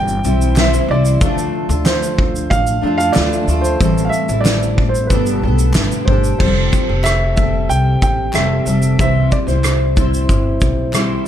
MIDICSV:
0, 0, Header, 1, 6, 480
1, 0, Start_track
1, 0, Key_signature, 0, "major"
1, 0, Tempo, 648649
1, 898, Time_signature, 4, 2, 24, 8
1, 8346, End_track
2, 0, Start_track
2, 0, Title_t, "Upright piano"
2, 0, Program_c, 0, 0
2, 0, Note_on_c, 0, 79, 99
2, 429, Note_on_c, 0, 76, 86
2, 439, Note_off_c, 0, 79, 0
2, 671, Note_off_c, 0, 76, 0
2, 672, Note_on_c, 0, 74, 99
2, 1115, Note_off_c, 0, 74, 0
2, 1375, Note_on_c, 0, 72, 95
2, 1851, Note_on_c, 0, 77, 112
2, 1871, Note_off_c, 0, 72, 0
2, 2191, Note_off_c, 0, 77, 0
2, 2202, Note_on_c, 0, 77, 113
2, 2312, Note_on_c, 0, 74, 96
2, 2321, Note_off_c, 0, 77, 0
2, 2674, Note_on_c, 0, 72, 91
2, 2696, Note_off_c, 0, 74, 0
2, 2994, Note_on_c, 0, 77, 76
2, 3004, Note_off_c, 0, 72, 0
2, 3029, Note_on_c, 0, 76, 101
2, 3051, Note_off_c, 0, 77, 0
2, 3260, Note_on_c, 0, 74, 85
2, 3265, Note_off_c, 0, 76, 0
2, 3619, Note_on_c, 0, 72, 82
2, 3650, Note_off_c, 0, 74, 0
2, 3751, Note_on_c, 0, 71, 74
2, 3762, Note_off_c, 0, 72, 0
2, 4215, Note_off_c, 0, 71, 0
2, 4479, Note_on_c, 0, 72, 81
2, 4714, Note_off_c, 0, 72, 0
2, 4725, Note_on_c, 0, 72, 86
2, 5206, Note_on_c, 0, 76, 101
2, 5226, Note_off_c, 0, 72, 0
2, 5434, Note_off_c, 0, 76, 0
2, 5449, Note_on_c, 0, 76, 85
2, 5676, Note_off_c, 0, 76, 0
2, 5693, Note_on_c, 0, 79, 100
2, 5930, Note_off_c, 0, 79, 0
2, 5941, Note_on_c, 0, 79, 97
2, 6175, Note_on_c, 0, 76, 92
2, 6187, Note_off_c, 0, 79, 0
2, 6653, Note_off_c, 0, 76, 0
2, 6664, Note_on_c, 0, 76, 99
2, 6898, Note_on_c, 0, 74, 92
2, 6909, Note_off_c, 0, 76, 0
2, 6935, Note_off_c, 0, 74, 0
2, 7011, Note_on_c, 0, 72, 76
2, 8307, Note_off_c, 0, 72, 0
2, 8346, End_track
3, 0, Start_track
3, 0, Title_t, "Steel-string acoustic guitar"
3, 0, Program_c, 1, 25
3, 0, Note_on_c, 1, 55, 45
3, 0, Note_on_c, 1, 60, 44
3, 0, Note_on_c, 1, 64, 47
3, 0, Note_on_c, 1, 72, 49
3, 169, Note_off_c, 1, 55, 0
3, 174, Note_off_c, 1, 60, 0
3, 178, Note_off_c, 1, 72, 0
3, 178, Note_on_c, 1, 55, 56
3, 181, Note_off_c, 1, 64, 0
3, 182, Note_on_c, 1, 60, 61
3, 190, Note_on_c, 1, 64, 65
3, 197, Note_on_c, 1, 72, 66
3, 410, Note_off_c, 1, 55, 0
3, 415, Note_off_c, 1, 60, 0
3, 418, Note_on_c, 1, 55, 70
3, 424, Note_off_c, 1, 64, 0
3, 424, Note_on_c, 1, 60, 71
3, 428, Note_off_c, 1, 72, 0
3, 435, Note_on_c, 1, 64, 81
3, 441, Note_on_c, 1, 72, 76
3, 649, Note_off_c, 1, 55, 0
3, 656, Note_off_c, 1, 60, 0
3, 658, Note_on_c, 1, 55, 66
3, 664, Note_off_c, 1, 64, 0
3, 664, Note_on_c, 1, 60, 62
3, 667, Note_off_c, 1, 72, 0
3, 673, Note_on_c, 1, 64, 74
3, 676, Note_on_c, 1, 72, 65
3, 897, Note_on_c, 1, 50, 84
3, 898, Note_off_c, 1, 55, 0
3, 901, Note_off_c, 1, 60, 0
3, 902, Note_on_c, 1, 57, 85
3, 904, Note_off_c, 1, 64, 0
3, 905, Note_on_c, 1, 62, 86
3, 907, Note_off_c, 1, 72, 0
3, 907, Note_on_c, 1, 65, 91
3, 911, Note_on_c, 1, 69, 88
3, 1241, Note_off_c, 1, 69, 0
3, 1249, Note_on_c, 1, 69, 58
3, 1250, Note_off_c, 1, 65, 0
3, 1257, Note_off_c, 1, 50, 0
3, 1258, Note_on_c, 1, 65, 50
3, 1260, Note_off_c, 1, 57, 0
3, 1260, Note_off_c, 1, 62, 0
3, 1269, Note_on_c, 1, 62, 49
3, 2080, Note_off_c, 1, 62, 0
3, 2082, Note_on_c, 1, 57, 61
3, 2088, Note_off_c, 1, 65, 0
3, 2089, Note_on_c, 1, 62, 67
3, 2097, Note_on_c, 1, 65, 67
3, 2100, Note_off_c, 1, 69, 0
3, 2103, Note_on_c, 1, 69, 73
3, 2315, Note_off_c, 1, 57, 0
3, 2320, Note_off_c, 1, 62, 0
3, 2324, Note_on_c, 1, 57, 71
3, 2326, Note_off_c, 1, 65, 0
3, 2329, Note_on_c, 1, 62, 70
3, 2333, Note_off_c, 1, 69, 0
3, 2335, Note_on_c, 1, 65, 74
3, 2342, Note_on_c, 1, 69, 71
3, 2552, Note_off_c, 1, 57, 0
3, 2560, Note_off_c, 1, 62, 0
3, 2561, Note_on_c, 1, 57, 63
3, 2565, Note_off_c, 1, 65, 0
3, 2569, Note_on_c, 1, 62, 62
3, 2574, Note_on_c, 1, 65, 68
3, 2576, Note_off_c, 1, 69, 0
3, 2585, Note_on_c, 1, 69, 73
3, 2809, Note_off_c, 1, 57, 0
3, 2810, Note_on_c, 1, 45, 80
3, 2813, Note_off_c, 1, 62, 0
3, 2813, Note_on_c, 1, 52, 83
3, 2814, Note_off_c, 1, 69, 0
3, 2815, Note_on_c, 1, 55, 81
3, 2816, Note_off_c, 1, 65, 0
3, 2821, Note_on_c, 1, 60, 85
3, 2823, Note_on_c, 1, 64, 88
3, 2823, Note_on_c, 1, 69, 92
3, 3163, Note_off_c, 1, 69, 0
3, 3172, Note_on_c, 1, 69, 51
3, 3173, Note_off_c, 1, 45, 0
3, 3175, Note_off_c, 1, 52, 0
3, 3176, Note_off_c, 1, 55, 0
3, 3177, Note_off_c, 1, 64, 0
3, 3179, Note_off_c, 1, 60, 0
3, 3185, Note_on_c, 1, 64, 52
3, 3189, Note_on_c, 1, 60, 46
3, 3198, Note_on_c, 1, 55, 47
3, 3771, Note_off_c, 1, 55, 0
3, 3771, Note_on_c, 1, 55, 67
3, 3778, Note_off_c, 1, 60, 0
3, 3779, Note_on_c, 1, 59, 78
3, 3781, Note_off_c, 1, 64, 0
3, 3781, Note_on_c, 1, 62, 80
3, 3783, Note_off_c, 1, 69, 0
3, 3785, Note_on_c, 1, 67, 77
3, 3786, Note_on_c, 1, 69, 82
3, 4002, Note_off_c, 1, 59, 0
3, 4009, Note_off_c, 1, 62, 0
3, 4011, Note_on_c, 1, 59, 55
3, 4014, Note_off_c, 1, 55, 0
3, 4016, Note_off_c, 1, 67, 0
3, 4018, Note_on_c, 1, 62, 57
3, 4022, Note_off_c, 1, 69, 0
3, 4025, Note_on_c, 1, 67, 64
3, 4032, Note_on_c, 1, 69, 70
3, 4243, Note_off_c, 1, 59, 0
3, 4248, Note_off_c, 1, 62, 0
3, 4252, Note_on_c, 1, 59, 63
3, 4257, Note_on_c, 1, 62, 68
3, 4259, Note_off_c, 1, 67, 0
3, 4262, Note_off_c, 1, 69, 0
3, 4268, Note_on_c, 1, 67, 74
3, 4271, Note_on_c, 1, 69, 67
3, 4495, Note_off_c, 1, 59, 0
3, 4497, Note_off_c, 1, 62, 0
3, 4500, Note_off_c, 1, 67, 0
3, 4504, Note_off_c, 1, 69, 0
3, 4505, Note_on_c, 1, 62, 69
3, 4509, Note_on_c, 1, 67, 71
3, 4512, Note_on_c, 1, 69, 72
3, 4738, Note_on_c, 1, 53, 73
3, 4740, Note_off_c, 1, 67, 0
3, 4741, Note_off_c, 1, 62, 0
3, 4741, Note_off_c, 1, 69, 0
3, 4741, Note_on_c, 1, 55, 78
3, 4744, Note_on_c, 1, 60, 86
3, 4749, Note_on_c, 1, 67, 77
3, 4750, Note_on_c, 1, 69, 87
3, 5090, Note_off_c, 1, 69, 0
3, 5098, Note_off_c, 1, 53, 0
3, 5099, Note_off_c, 1, 55, 0
3, 5099, Note_on_c, 1, 69, 53
3, 5101, Note_off_c, 1, 60, 0
3, 5103, Note_off_c, 1, 67, 0
3, 5111, Note_on_c, 1, 67, 42
3, 5118, Note_on_c, 1, 60, 43
3, 5446, Note_on_c, 1, 55, 55
3, 5447, Note_off_c, 1, 60, 0
3, 5456, Note_off_c, 1, 67, 0
3, 5456, Note_off_c, 1, 69, 0
3, 5456, Note_on_c, 1, 60, 57
3, 5465, Note_on_c, 1, 67, 60
3, 5465, Note_on_c, 1, 69, 63
3, 6163, Note_off_c, 1, 55, 0
3, 6166, Note_on_c, 1, 55, 69
3, 6171, Note_off_c, 1, 60, 0
3, 6174, Note_on_c, 1, 60, 64
3, 6177, Note_off_c, 1, 67, 0
3, 6178, Note_off_c, 1, 69, 0
3, 6180, Note_on_c, 1, 67, 69
3, 6187, Note_on_c, 1, 69, 68
3, 6393, Note_off_c, 1, 55, 0
3, 6402, Note_on_c, 1, 55, 61
3, 6404, Note_off_c, 1, 60, 0
3, 6412, Note_off_c, 1, 67, 0
3, 6413, Note_on_c, 1, 60, 57
3, 6420, Note_off_c, 1, 69, 0
3, 6421, Note_on_c, 1, 67, 73
3, 6429, Note_on_c, 1, 69, 67
3, 6647, Note_off_c, 1, 55, 0
3, 6647, Note_on_c, 1, 48, 81
3, 6651, Note_off_c, 1, 60, 0
3, 6651, Note_on_c, 1, 52, 70
3, 6656, Note_on_c, 1, 55, 80
3, 6659, Note_off_c, 1, 67, 0
3, 6659, Note_off_c, 1, 69, 0
3, 6660, Note_on_c, 1, 60, 87
3, 6662, Note_on_c, 1, 64, 88
3, 6662, Note_on_c, 1, 72, 86
3, 7000, Note_off_c, 1, 72, 0
3, 7005, Note_off_c, 1, 64, 0
3, 7008, Note_on_c, 1, 72, 47
3, 7012, Note_off_c, 1, 60, 0
3, 7013, Note_off_c, 1, 48, 0
3, 7014, Note_on_c, 1, 64, 46
3, 7015, Note_off_c, 1, 52, 0
3, 7018, Note_off_c, 1, 55, 0
3, 7021, Note_on_c, 1, 60, 41
3, 7030, Note_on_c, 1, 55, 42
3, 7357, Note_off_c, 1, 55, 0
3, 7366, Note_on_c, 1, 55, 58
3, 7368, Note_off_c, 1, 60, 0
3, 7374, Note_off_c, 1, 72, 0
3, 7375, Note_off_c, 1, 64, 0
3, 7377, Note_on_c, 1, 60, 58
3, 7384, Note_on_c, 1, 64, 63
3, 7391, Note_on_c, 1, 72, 65
3, 8075, Note_off_c, 1, 55, 0
3, 8083, Note_on_c, 1, 55, 74
3, 8084, Note_off_c, 1, 60, 0
3, 8092, Note_off_c, 1, 64, 0
3, 8093, Note_on_c, 1, 60, 70
3, 8096, Note_off_c, 1, 72, 0
3, 8100, Note_on_c, 1, 64, 72
3, 8105, Note_on_c, 1, 72, 75
3, 8316, Note_off_c, 1, 55, 0
3, 8327, Note_off_c, 1, 60, 0
3, 8332, Note_off_c, 1, 64, 0
3, 8338, Note_off_c, 1, 72, 0
3, 8346, End_track
4, 0, Start_track
4, 0, Title_t, "Tonewheel organ"
4, 0, Program_c, 2, 16
4, 0, Note_on_c, 2, 52, 64
4, 0, Note_on_c, 2, 55, 59
4, 0, Note_on_c, 2, 60, 72
4, 872, Note_off_c, 2, 55, 0
4, 886, Note_off_c, 2, 52, 0
4, 887, Note_off_c, 2, 60, 0
4, 894, Note_on_c, 2, 62, 78
4, 900, Note_on_c, 2, 53, 66
4, 901, Note_on_c, 2, 57, 58
4, 2796, Note_off_c, 2, 62, 0
4, 2799, Note_off_c, 2, 53, 0
4, 2809, Note_on_c, 2, 55, 64
4, 2811, Note_on_c, 2, 60, 70
4, 3764, Note_off_c, 2, 60, 0
4, 3779, Note_on_c, 2, 47, 74
4, 4709, Note_off_c, 2, 57, 0
4, 4714, Note_off_c, 2, 55, 0
4, 4729, Note_off_c, 2, 47, 0
4, 8346, End_track
5, 0, Start_track
5, 0, Title_t, "Upright bass"
5, 0, Program_c, 3, 32
5, 0, Note_on_c, 3, 31, 93
5, 137, Note_off_c, 3, 31, 0
5, 181, Note_on_c, 3, 35, 85
5, 573, Note_off_c, 3, 35, 0
5, 653, Note_on_c, 3, 36, 94
5, 852, Note_off_c, 3, 36, 0
5, 896, Note_on_c, 3, 38, 107
5, 1094, Note_off_c, 3, 38, 0
5, 1250, Note_on_c, 3, 38, 101
5, 1824, Note_off_c, 3, 38, 0
5, 1859, Note_on_c, 3, 33, 93
5, 2055, Note_off_c, 3, 33, 0
5, 2095, Note_on_c, 3, 41, 92
5, 2293, Note_off_c, 3, 41, 0
5, 2341, Note_on_c, 3, 38, 98
5, 2536, Note_off_c, 3, 38, 0
5, 2571, Note_on_c, 3, 38, 79
5, 2770, Note_off_c, 3, 38, 0
5, 2816, Note_on_c, 3, 33, 109
5, 3013, Note_off_c, 3, 33, 0
5, 3173, Note_on_c, 3, 33, 92
5, 3746, Note_off_c, 3, 33, 0
5, 3777, Note_on_c, 3, 31, 97
5, 4020, Note_on_c, 3, 35, 88
5, 4031, Note_off_c, 3, 31, 0
5, 4216, Note_off_c, 3, 35, 0
5, 4260, Note_on_c, 3, 31, 101
5, 4357, Note_off_c, 3, 31, 0
5, 4497, Note_on_c, 3, 31, 90
5, 4694, Note_off_c, 3, 31, 0
5, 4738, Note_on_c, 3, 29, 101
5, 4934, Note_off_c, 3, 29, 0
5, 5101, Note_on_c, 3, 29, 91
5, 5670, Note_off_c, 3, 29, 0
5, 5695, Note_on_c, 3, 36, 86
5, 5893, Note_off_c, 3, 36, 0
5, 5936, Note_on_c, 3, 33, 80
5, 6134, Note_off_c, 3, 33, 0
5, 6169, Note_on_c, 3, 29, 86
5, 6370, Note_off_c, 3, 29, 0
5, 6412, Note_on_c, 3, 29, 84
5, 6612, Note_off_c, 3, 29, 0
5, 6656, Note_on_c, 3, 36, 102
5, 6854, Note_off_c, 3, 36, 0
5, 7005, Note_on_c, 3, 36, 90
5, 7583, Note_off_c, 3, 36, 0
5, 7617, Note_on_c, 3, 31, 86
5, 7815, Note_off_c, 3, 31, 0
5, 7858, Note_on_c, 3, 35, 77
5, 8253, Note_off_c, 3, 35, 0
5, 8346, End_track
6, 0, Start_track
6, 0, Title_t, "Drums"
6, 59, Note_on_c, 9, 82, 58
6, 133, Note_off_c, 9, 82, 0
6, 180, Note_on_c, 9, 82, 47
6, 254, Note_off_c, 9, 82, 0
6, 306, Note_on_c, 9, 82, 56
6, 380, Note_off_c, 9, 82, 0
6, 415, Note_on_c, 9, 39, 84
6, 418, Note_on_c, 9, 82, 81
6, 423, Note_on_c, 9, 38, 127
6, 489, Note_off_c, 9, 39, 0
6, 492, Note_off_c, 9, 82, 0
6, 497, Note_off_c, 9, 38, 0
6, 545, Note_on_c, 9, 82, 56
6, 619, Note_off_c, 9, 82, 0
6, 778, Note_on_c, 9, 82, 52
6, 852, Note_off_c, 9, 82, 0
6, 897, Note_on_c, 9, 36, 123
6, 899, Note_on_c, 9, 82, 75
6, 971, Note_off_c, 9, 36, 0
6, 973, Note_off_c, 9, 82, 0
6, 1022, Note_on_c, 9, 82, 62
6, 1096, Note_off_c, 9, 82, 0
6, 1257, Note_on_c, 9, 82, 50
6, 1331, Note_off_c, 9, 82, 0
6, 1374, Note_on_c, 9, 82, 75
6, 1375, Note_on_c, 9, 38, 127
6, 1376, Note_on_c, 9, 39, 92
6, 1448, Note_off_c, 9, 82, 0
6, 1449, Note_off_c, 9, 38, 0
6, 1450, Note_off_c, 9, 39, 0
6, 1501, Note_on_c, 9, 82, 62
6, 1575, Note_off_c, 9, 82, 0
6, 1617, Note_on_c, 9, 36, 93
6, 1691, Note_off_c, 9, 36, 0
6, 1744, Note_on_c, 9, 82, 53
6, 1818, Note_off_c, 9, 82, 0
6, 1857, Note_on_c, 9, 36, 90
6, 1864, Note_on_c, 9, 82, 67
6, 1931, Note_off_c, 9, 36, 0
6, 1938, Note_off_c, 9, 82, 0
6, 1973, Note_on_c, 9, 82, 62
6, 2047, Note_off_c, 9, 82, 0
6, 2221, Note_on_c, 9, 82, 53
6, 2295, Note_off_c, 9, 82, 0
6, 2325, Note_on_c, 9, 39, 86
6, 2333, Note_on_c, 9, 82, 76
6, 2337, Note_on_c, 9, 38, 122
6, 2399, Note_off_c, 9, 39, 0
6, 2407, Note_off_c, 9, 82, 0
6, 2411, Note_off_c, 9, 38, 0
6, 2464, Note_on_c, 9, 82, 55
6, 2538, Note_off_c, 9, 82, 0
6, 2577, Note_on_c, 9, 82, 50
6, 2651, Note_off_c, 9, 82, 0
6, 2697, Note_on_c, 9, 82, 56
6, 2771, Note_off_c, 9, 82, 0
6, 2816, Note_on_c, 9, 36, 118
6, 2821, Note_on_c, 9, 82, 73
6, 2890, Note_off_c, 9, 36, 0
6, 2895, Note_off_c, 9, 82, 0
6, 2944, Note_on_c, 9, 82, 63
6, 3018, Note_off_c, 9, 82, 0
6, 3054, Note_on_c, 9, 82, 51
6, 3128, Note_off_c, 9, 82, 0
6, 3174, Note_on_c, 9, 82, 55
6, 3248, Note_off_c, 9, 82, 0
6, 3294, Note_on_c, 9, 39, 89
6, 3295, Note_on_c, 9, 82, 84
6, 3296, Note_on_c, 9, 38, 126
6, 3368, Note_off_c, 9, 39, 0
6, 3369, Note_off_c, 9, 82, 0
6, 3370, Note_off_c, 9, 38, 0
6, 3423, Note_on_c, 9, 82, 55
6, 3497, Note_off_c, 9, 82, 0
6, 3537, Note_on_c, 9, 36, 88
6, 3611, Note_off_c, 9, 36, 0
6, 3662, Note_on_c, 9, 82, 55
6, 3736, Note_off_c, 9, 82, 0
6, 3776, Note_on_c, 9, 36, 85
6, 3778, Note_on_c, 9, 82, 66
6, 3850, Note_off_c, 9, 36, 0
6, 3852, Note_off_c, 9, 82, 0
6, 3894, Note_on_c, 9, 82, 54
6, 3968, Note_off_c, 9, 82, 0
6, 4134, Note_on_c, 9, 82, 56
6, 4208, Note_off_c, 9, 82, 0
6, 4245, Note_on_c, 9, 39, 91
6, 4250, Note_on_c, 9, 82, 81
6, 4255, Note_on_c, 9, 38, 119
6, 4319, Note_off_c, 9, 39, 0
6, 4324, Note_off_c, 9, 82, 0
6, 4329, Note_off_c, 9, 38, 0
6, 4378, Note_on_c, 9, 82, 56
6, 4452, Note_off_c, 9, 82, 0
6, 4497, Note_on_c, 9, 36, 97
6, 4571, Note_off_c, 9, 36, 0
6, 4617, Note_on_c, 9, 82, 56
6, 4691, Note_off_c, 9, 82, 0
6, 4736, Note_on_c, 9, 36, 106
6, 4739, Note_on_c, 9, 49, 103
6, 4810, Note_off_c, 9, 36, 0
6, 4813, Note_off_c, 9, 49, 0
6, 4978, Note_on_c, 9, 82, 49
6, 4979, Note_on_c, 9, 36, 87
6, 5052, Note_off_c, 9, 82, 0
6, 5053, Note_off_c, 9, 36, 0
6, 5209, Note_on_c, 9, 39, 96
6, 5224, Note_on_c, 9, 82, 79
6, 5225, Note_on_c, 9, 37, 115
6, 5283, Note_off_c, 9, 39, 0
6, 5298, Note_off_c, 9, 82, 0
6, 5299, Note_off_c, 9, 37, 0
6, 5453, Note_on_c, 9, 82, 48
6, 5457, Note_on_c, 9, 36, 84
6, 5527, Note_off_c, 9, 82, 0
6, 5531, Note_off_c, 9, 36, 0
6, 5701, Note_on_c, 9, 82, 59
6, 5775, Note_off_c, 9, 82, 0
6, 5936, Note_on_c, 9, 36, 86
6, 5937, Note_on_c, 9, 82, 47
6, 6010, Note_off_c, 9, 36, 0
6, 6011, Note_off_c, 9, 82, 0
6, 6165, Note_on_c, 9, 39, 86
6, 6177, Note_on_c, 9, 82, 77
6, 6182, Note_on_c, 9, 37, 114
6, 6239, Note_off_c, 9, 39, 0
6, 6251, Note_off_c, 9, 82, 0
6, 6256, Note_off_c, 9, 37, 0
6, 6412, Note_on_c, 9, 82, 56
6, 6486, Note_off_c, 9, 82, 0
6, 6529, Note_on_c, 9, 82, 52
6, 6603, Note_off_c, 9, 82, 0
6, 6655, Note_on_c, 9, 36, 109
6, 6661, Note_on_c, 9, 82, 72
6, 6729, Note_off_c, 9, 36, 0
6, 6735, Note_off_c, 9, 82, 0
6, 6894, Note_on_c, 9, 82, 47
6, 6897, Note_on_c, 9, 36, 81
6, 6968, Note_off_c, 9, 82, 0
6, 6971, Note_off_c, 9, 36, 0
6, 7016, Note_on_c, 9, 82, 53
6, 7018, Note_on_c, 9, 37, 35
6, 7090, Note_off_c, 9, 82, 0
6, 7092, Note_off_c, 9, 37, 0
6, 7135, Note_on_c, 9, 82, 79
6, 7136, Note_on_c, 9, 37, 124
6, 7136, Note_on_c, 9, 39, 89
6, 7209, Note_off_c, 9, 82, 0
6, 7210, Note_off_c, 9, 37, 0
6, 7210, Note_off_c, 9, 39, 0
6, 7377, Note_on_c, 9, 82, 49
6, 7378, Note_on_c, 9, 36, 86
6, 7451, Note_off_c, 9, 82, 0
6, 7452, Note_off_c, 9, 36, 0
6, 7503, Note_on_c, 9, 82, 52
6, 7577, Note_off_c, 9, 82, 0
6, 7616, Note_on_c, 9, 36, 78
6, 7620, Note_on_c, 9, 82, 58
6, 7690, Note_off_c, 9, 36, 0
6, 7694, Note_off_c, 9, 82, 0
6, 7851, Note_on_c, 9, 82, 43
6, 7856, Note_on_c, 9, 36, 85
6, 7925, Note_off_c, 9, 82, 0
6, 7930, Note_off_c, 9, 36, 0
6, 8089, Note_on_c, 9, 39, 81
6, 8096, Note_on_c, 9, 82, 80
6, 8101, Note_on_c, 9, 37, 119
6, 8163, Note_off_c, 9, 39, 0
6, 8170, Note_off_c, 9, 82, 0
6, 8175, Note_off_c, 9, 37, 0
6, 8346, End_track
0, 0, End_of_file